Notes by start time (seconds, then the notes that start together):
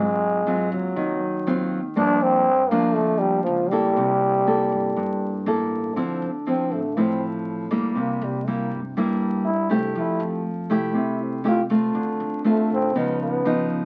Already playing: G#2 F#3 G#3 C4 F4
0.47 F#3 C4 F4
0.72 D#2 F#3
0.96 D#2 D#3
1.47 D#2 F#3 C4 F4
1.96 G2 F3 A#3 D4
2.23 C4
2.69 D2 F3 A#3 D4
2.94 D2 A3
3.18 G3
3.43 C#2 F3
3.69 G3 A#3 E4 A4
3.96 C2 C3
4.47 A#3 E4 A4
4.72 G2
4.96 G2
5.46 A1 A#3 E4 A4
5.96 D2 D3 F3 C4 E4
6.22 D2
6.47 F3 C4 E4
6.71 A1 A3
6.97 A2 F3 C4 E4
7.71 D2 G3 A#3 E4
7.95 C2 C3 A#3
8.21 C2 G3
8.47 G3 A#3 E4
8.71 G2
8.97 G2 G3 A#3 E4
9.45 E4
9.70 C2 A3 C4 E4 G4
9.95 F2 F3 E4
10.20 F2
10.70 C2 A3 E4 G4
10.94 C3 E4
11.23 C4
11.44 A3 E4 G4
11.48 F4
11.70 E2 A3 C4 F4
11.95 D2 D3
12.20 D2
12.44 A3 C4 F4
12.49 A3
12.70 A1 C4
12.95 C#2 C#3 F3 B3 D#4
13.23 B3
13.45 F3 B3 D#4
13.70 C#2